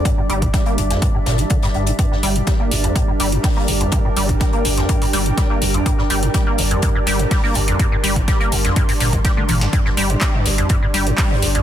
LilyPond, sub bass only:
\new Staff \with { instrumentName = "Sub bass" } { \clef bass \time 4/4 \key g \dorian \tempo 4 = 124 r8 g,,8 r8 g,,8 r8 g,,8 r8 g,,8 | r8 g,,8 r8 g,,8 r8 g,,8 r8 g,,8 | r8 g,,8 r8 g,,8 r8 g,,8 r8 g,,8 | r8 g,,8 r8 g,,8 r8 g,,8 r8 g,,8 |
r8 g,,8 r8 g,,8 r8 g,,8 r8 g,,8 | r8 g,,8 r8 g,,8 r8 g,,8 r8 g,,8 | }